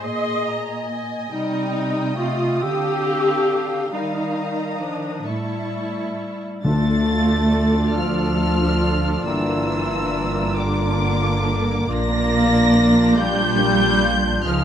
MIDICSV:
0, 0, Header, 1, 10, 480
1, 0, Start_track
1, 0, Tempo, 868307
1, 726, Time_signature, 6, 3, 24, 8
1, 2657, Tempo, 918836
1, 3617, Tempo, 879765
1, 4097, Tempo, 872093
1, 6497, Tempo, 852273
1, 8050, End_track
2, 0, Start_track
2, 0, Title_t, "Violin section"
2, 0, Program_c, 0, 48
2, 19, Note_on_c, 0, 80, 72
2, 713, Note_off_c, 0, 80, 0
2, 731, Note_on_c, 0, 87, 77
2, 2166, Note_off_c, 0, 87, 0
2, 2173, Note_on_c, 0, 87, 66
2, 2879, Note_off_c, 0, 87, 0
2, 2891, Note_on_c, 0, 85, 56
2, 3508, Note_off_c, 0, 85, 0
2, 3613, Note_on_c, 0, 93, 100
2, 4312, Note_off_c, 0, 93, 0
2, 4333, Note_on_c, 0, 89, 99
2, 5049, Note_off_c, 0, 89, 0
2, 5050, Note_on_c, 0, 88, 100
2, 5750, Note_off_c, 0, 88, 0
2, 5770, Note_on_c, 0, 86, 105
2, 6497, Note_off_c, 0, 86, 0
2, 6504, Note_on_c, 0, 94, 121
2, 7222, Note_off_c, 0, 94, 0
2, 7222, Note_on_c, 0, 91, 127
2, 7938, Note_off_c, 0, 91, 0
2, 7942, Note_on_c, 0, 89, 107
2, 8050, Note_off_c, 0, 89, 0
2, 8050, End_track
3, 0, Start_track
3, 0, Title_t, "Cor anglais"
3, 0, Program_c, 1, 69
3, 3620, Note_on_c, 1, 69, 66
3, 5030, Note_off_c, 1, 69, 0
3, 5051, Note_on_c, 1, 70, 70
3, 6473, Note_off_c, 1, 70, 0
3, 6499, Note_on_c, 1, 74, 70
3, 7760, Note_off_c, 1, 74, 0
3, 7942, Note_on_c, 1, 75, 85
3, 8050, Note_off_c, 1, 75, 0
3, 8050, End_track
4, 0, Start_track
4, 0, Title_t, "Viola section"
4, 0, Program_c, 2, 48
4, 22, Note_on_c, 2, 75, 100
4, 491, Note_off_c, 2, 75, 0
4, 723, Note_on_c, 2, 63, 101
4, 1180, Note_off_c, 2, 63, 0
4, 1202, Note_on_c, 2, 65, 99
4, 1443, Note_off_c, 2, 65, 0
4, 1447, Note_on_c, 2, 67, 117
4, 2171, Note_off_c, 2, 67, 0
4, 2174, Note_on_c, 2, 63, 84
4, 2649, Note_off_c, 2, 63, 0
4, 2657, Note_on_c, 2, 62, 73
4, 2892, Note_off_c, 2, 62, 0
4, 2897, Note_on_c, 2, 64, 76
4, 3617, Note_on_c, 2, 62, 70
4, 3619, Note_off_c, 2, 64, 0
4, 3619, Note_on_c, 2, 57, 73
4, 5030, Note_off_c, 2, 57, 0
4, 5051, Note_on_c, 2, 58, 75
4, 6473, Note_off_c, 2, 62, 0
4, 6496, Note_on_c, 2, 62, 80
4, 7914, Note_off_c, 2, 62, 0
4, 7936, Note_off_c, 2, 58, 0
4, 7938, Note_on_c, 2, 63, 90
4, 7939, Note_on_c, 2, 56, 93
4, 8050, Note_off_c, 2, 56, 0
4, 8050, Note_off_c, 2, 63, 0
4, 8050, End_track
5, 0, Start_track
5, 0, Title_t, "Violin section"
5, 0, Program_c, 3, 48
5, 0, Note_on_c, 3, 75, 82
5, 13, Note_on_c, 3, 84, 73
5, 249, Note_on_c, 3, 82, 76
5, 250, Note_off_c, 3, 84, 0
5, 487, Note_off_c, 3, 82, 0
5, 492, Note_on_c, 3, 80, 75
5, 723, Note_off_c, 3, 80, 0
5, 725, Note_on_c, 3, 79, 76
5, 1441, Note_off_c, 3, 79, 0
5, 1442, Note_off_c, 3, 75, 0
5, 1448, Note_on_c, 3, 77, 77
5, 1448, Note_on_c, 3, 79, 73
5, 2157, Note_off_c, 3, 79, 0
5, 2177, Note_on_c, 3, 82, 70
5, 2893, Note_off_c, 3, 77, 0
5, 2893, Note_on_c, 3, 76, 56
5, 2893, Note_on_c, 3, 81, 57
5, 2895, Note_off_c, 3, 82, 0
5, 3496, Note_off_c, 3, 76, 0
5, 3508, Note_off_c, 3, 81, 0
5, 3616, Note_on_c, 3, 74, 72
5, 3618, Note_on_c, 3, 57, 69
5, 3730, Note_off_c, 3, 57, 0
5, 3743, Note_on_c, 3, 62, 60
5, 3860, Note_off_c, 3, 62, 0
5, 3861, Note_on_c, 3, 65, 67
5, 3979, Note_off_c, 3, 65, 0
5, 3979, Note_on_c, 3, 62, 60
5, 4097, Note_off_c, 3, 62, 0
5, 4098, Note_on_c, 3, 57, 60
5, 4217, Note_off_c, 3, 57, 0
5, 4220, Note_on_c, 3, 62, 63
5, 4337, Note_on_c, 3, 65, 62
5, 4338, Note_off_c, 3, 62, 0
5, 4456, Note_off_c, 3, 65, 0
5, 4456, Note_on_c, 3, 62, 62
5, 4569, Note_on_c, 3, 57, 65
5, 4575, Note_off_c, 3, 62, 0
5, 4691, Note_off_c, 3, 57, 0
5, 4691, Note_on_c, 3, 62, 58
5, 4807, Note_on_c, 3, 65, 66
5, 4811, Note_off_c, 3, 62, 0
5, 4929, Note_off_c, 3, 65, 0
5, 4929, Note_on_c, 3, 62, 63
5, 5048, Note_on_c, 3, 55, 74
5, 5049, Note_off_c, 3, 62, 0
5, 5159, Note_off_c, 3, 55, 0
5, 5169, Note_on_c, 3, 58, 66
5, 5288, Note_off_c, 3, 58, 0
5, 5294, Note_on_c, 3, 62, 70
5, 5409, Note_on_c, 3, 65, 64
5, 5410, Note_off_c, 3, 62, 0
5, 5527, Note_off_c, 3, 65, 0
5, 5530, Note_on_c, 3, 62, 64
5, 5647, Note_off_c, 3, 62, 0
5, 5652, Note_on_c, 3, 58, 64
5, 5767, Note_on_c, 3, 55, 70
5, 5768, Note_off_c, 3, 58, 0
5, 5886, Note_off_c, 3, 55, 0
5, 5893, Note_on_c, 3, 58, 67
5, 6007, Note_on_c, 3, 62, 70
5, 6010, Note_off_c, 3, 58, 0
5, 6129, Note_off_c, 3, 62, 0
5, 6129, Note_on_c, 3, 65, 65
5, 6251, Note_on_c, 3, 62, 73
5, 6252, Note_off_c, 3, 65, 0
5, 6372, Note_on_c, 3, 58, 69
5, 6374, Note_off_c, 3, 62, 0
5, 6473, Note_off_c, 3, 74, 0
5, 6487, Note_off_c, 3, 58, 0
5, 6493, Note_on_c, 3, 74, 81
5, 6494, Note_on_c, 3, 58, 81
5, 6608, Note_off_c, 3, 58, 0
5, 6623, Note_on_c, 3, 62, 70
5, 6741, Note_on_c, 3, 65, 74
5, 6742, Note_off_c, 3, 62, 0
5, 6859, Note_on_c, 3, 62, 74
5, 6860, Note_off_c, 3, 65, 0
5, 6979, Note_off_c, 3, 62, 0
5, 6983, Note_on_c, 3, 58, 72
5, 7095, Note_on_c, 3, 62, 78
5, 7100, Note_off_c, 3, 58, 0
5, 7216, Note_off_c, 3, 62, 0
5, 7219, Note_on_c, 3, 65, 80
5, 7337, Note_off_c, 3, 65, 0
5, 7341, Note_on_c, 3, 62, 79
5, 7457, Note_off_c, 3, 62, 0
5, 7461, Note_on_c, 3, 58, 78
5, 7576, Note_on_c, 3, 62, 73
5, 7578, Note_off_c, 3, 58, 0
5, 7696, Note_off_c, 3, 62, 0
5, 7702, Note_on_c, 3, 65, 78
5, 7819, Note_off_c, 3, 65, 0
5, 7822, Note_on_c, 3, 62, 77
5, 7912, Note_off_c, 3, 74, 0
5, 7939, Note_off_c, 3, 62, 0
5, 7943, Note_on_c, 3, 56, 90
5, 7945, Note_on_c, 3, 77, 94
5, 8050, Note_off_c, 3, 56, 0
5, 8050, Note_off_c, 3, 77, 0
5, 8050, End_track
6, 0, Start_track
6, 0, Title_t, "Clarinet"
6, 0, Program_c, 4, 71
6, 18, Note_on_c, 4, 68, 87
6, 467, Note_off_c, 4, 68, 0
6, 721, Note_on_c, 4, 55, 84
6, 1193, Note_on_c, 4, 57, 84
6, 1201, Note_off_c, 4, 55, 0
6, 1439, Note_on_c, 4, 60, 101
6, 1447, Note_off_c, 4, 57, 0
6, 2163, Note_off_c, 4, 60, 0
6, 2167, Note_on_c, 4, 55, 72
6, 2654, Note_on_c, 4, 53, 64
6, 2662, Note_off_c, 4, 55, 0
6, 2890, Note_on_c, 4, 55, 69
6, 2898, Note_off_c, 4, 53, 0
6, 3615, Note_off_c, 4, 55, 0
6, 3618, Note_on_c, 4, 65, 69
6, 6398, Note_off_c, 4, 65, 0
6, 6492, Note_on_c, 4, 65, 77
6, 8050, Note_off_c, 4, 65, 0
6, 8050, End_track
7, 0, Start_track
7, 0, Title_t, "French horn section"
7, 0, Program_c, 5, 60
7, 3623, Note_on_c, 5, 57, 87
7, 4317, Note_off_c, 5, 57, 0
7, 4338, Note_on_c, 5, 53, 89
7, 5051, Note_on_c, 5, 50, 86
7, 5052, Note_off_c, 5, 53, 0
7, 5751, Note_off_c, 5, 50, 0
7, 5758, Note_on_c, 5, 50, 84
7, 6477, Note_off_c, 5, 50, 0
7, 6500, Note_on_c, 5, 58, 103
7, 7206, Note_off_c, 5, 58, 0
7, 7220, Note_on_c, 5, 55, 112
7, 7847, Note_off_c, 5, 55, 0
7, 7942, Note_on_c, 5, 53, 88
7, 8050, Note_off_c, 5, 53, 0
7, 8050, End_track
8, 0, Start_track
8, 0, Title_t, "Cello section"
8, 0, Program_c, 6, 48
8, 20, Note_on_c, 6, 46, 69
8, 727, Note_on_c, 6, 48, 79
8, 728, Note_off_c, 6, 46, 0
8, 1430, Note_off_c, 6, 48, 0
8, 1444, Note_on_c, 6, 50, 74
8, 2169, Note_off_c, 6, 50, 0
8, 2170, Note_on_c, 6, 51, 72
8, 2878, Note_off_c, 6, 51, 0
8, 2890, Note_on_c, 6, 45, 60
8, 3507, Note_off_c, 6, 45, 0
8, 3621, Note_on_c, 6, 57, 87
8, 4316, Note_off_c, 6, 57, 0
8, 4340, Note_on_c, 6, 53, 81
8, 5052, Note_on_c, 6, 52, 84
8, 5053, Note_off_c, 6, 53, 0
8, 5751, Note_off_c, 6, 52, 0
8, 5767, Note_on_c, 6, 50, 85
8, 6496, Note_off_c, 6, 50, 0
8, 6497, Note_on_c, 6, 58, 99
8, 7204, Note_off_c, 6, 58, 0
8, 7220, Note_on_c, 6, 55, 105
8, 7937, Note_off_c, 6, 55, 0
8, 7939, Note_on_c, 6, 53, 90
8, 8050, Note_off_c, 6, 53, 0
8, 8050, End_track
9, 0, Start_track
9, 0, Title_t, "Timpani"
9, 0, Program_c, 7, 47
9, 3617, Note_on_c, 7, 50, 94
9, 4315, Note_off_c, 7, 50, 0
9, 8050, End_track
10, 0, Start_track
10, 0, Title_t, "Double bass section"
10, 0, Program_c, 8, 48
10, 3615, Note_on_c, 8, 38, 76
10, 5028, Note_off_c, 8, 38, 0
10, 5048, Note_on_c, 8, 31, 80
10, 6471, Note_off_c, 8, 31, 0
10, 6495, Note_on_c, 8, 34, 83
10, 7913, Note_off_c, 8, 34, 0
10, 7932, Note_on_c, 8, 37, 97
10, 8050, Note_off_c, 8, 37, 0
10, 8050, End_track
0, 0, End_of_file